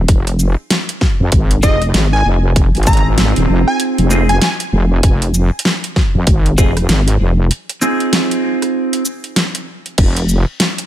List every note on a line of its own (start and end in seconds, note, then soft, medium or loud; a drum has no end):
0.08 0.55 F1 medium
0.08 kick loud
0.08 closed hi-hat medium
0.27 closed hi-hat medium
0.39 shaker medium
0.70 snare loud
0.70 closed hi-hat medium
0.89 closed hi-hat medium
1.01 kick medium
1.01 snare medium
1.20 1.30 F2 loud
1.32 1.61 G#1 medium
1.32 kick loud
1.32 closed hi-hat medium
1.51 closed hi-hat soft
1.63 1.92 F1 loud
1.63 1.76 C4 medium
1.63 1.76 D#4 medium
1.63 1.76 F4 medium
1.63 1.76 G#4 loud
1.63 1.83 D#5 loud
1.63 kick loud
1.63 shaker medium
1.82 cross-stick soft
1.82 closed hi-hat soft
1.90 cross-stick soft
1.94 2.23 G#1 loud
1.94 snare loud
1.94 closed hi-hat medium
2.00 cross-stick soft
2.13 2.26 G#5 medium
2.25 2.72 F1 loud
2.56 kick loud
2.56 closed hi-hat medium
2.75 3.34 G#1 loud
2.75 closed hi-hat soft
2.77 closed hi-hat soft
2.83 4.08 C4 medium
2.83 closed hi-hat soft
2.87 4.08 D#4 medium
2.87 4.08 F4 medium
2.87 4.08 G#4 medium
2.87 3.06 A#5 loud
2.87 kick loud
2.87 closed hi-hat soft
2.87 shaker medium
2.93 closed hi-hat soft
2.97 closed hi-hat soft
3.18 snare loud
3.18 closed hi-hat medium
3.36 3.47 D#1 loud
3.36 closed hi-hat medium
3.49 3.65 F1 loud
3.67 3.81 G#5 medium
3.67 cross-stick soft
3.80 closed hi-hat medium
3.98 4.40 F1 loud
3.98 closed hi-hat soft
4.10 4.30 C4 medium
4.10 4.31 D#4 medium
4.10 4.30 F4 medium
4.10 4.30 G#4 medium
4.10 shaker medium
4.29 4.37 G#5 medium
4.29 closed hi-hat soft
4.41 4.53 G#5 medium
4.41 snare loud
4.41 closed hi-hat medium
4.60 closed hi-hat medium
4.72 5.01 F1 loud
5.03 5.50 F1 medium
5.03 kick loud
5.03 closed hi-hat medium
5.22 closed hi-hat medium
5.34 shaker medium
5.59 closed hi-hat medium
5.65 snare loud
5.84 closed hi-hat medium
5.96 kick medium
5.96 snare medium
6.15 6.25 F2 loud
6.27 6.56 G#1 loud
6.27 kick loud
6.27 closed hi-hat medium
6.46 closed hi-hat medium
6.58 6.87 F1 loud
6.58 6.71 C4 medium
6.58 6.71 D#4 medium
6.58 6.71 F4 medium
6.58 6.71 G#4 loud
6.58 kick loud
6.58 shaker medium
6.77 cross-stick medium
6.77 closed hi-hat soft
6.89 7.18 G#1 loud
6.89 snare loud
6.89 closed hi-hat medium
7.08 closed hi-hat medium
7.20 7.51 F1 loud
7.51 closed hi-hat medium
7.69 closed hi-hat medium
7.81 9.03 C4 medium
7.81 9.03 D#4 medium
7.81 9.03 F4 medium
7.81 9.03 G#4 medium
7.81 shaker medium
8.00 closed hi-hat soft
8.13 snare loud
8.13 closed hi-hat medium
8.31 closed hi-hat medium
8.62 cross-stick soft
8.62 closed hi-hat soft
8.93 closed hi-hat medium
9.05 shaker medium
9.24 closed hi-hat soft
9.36 snare loud
9.36 closed hi-hat medium
9.55 closed hi-hat medium
9.86 closed hi-hat soft
9.98 10.45 F1 medium
9.98 kick loud
9.98 closed hi-hat medium
9.98 crash medium
10.17 closed hi-hat medium
10.29 shaker medium
10.60 snare loud
10.60 closed hi-hat medium
10.78 closed hi-hat medium